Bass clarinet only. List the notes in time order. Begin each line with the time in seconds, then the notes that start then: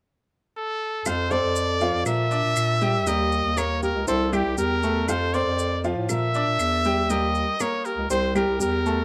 1.05 F2
1.43 F2
1.93 F2
2.06 A#2
2.44 A#2
2.56 A#2
3.06 D#2
3.44 D#2
3.95 C#2
4.07 C2
4.45 C2
4.58 E2
5.08 F2
5.46 F2
5.96 A2
6.09 A#2
6.46 A#2
6.59 E2
7.09 D#2
7.97 C#2
8.10 C2
8.48 C2
8.60 E2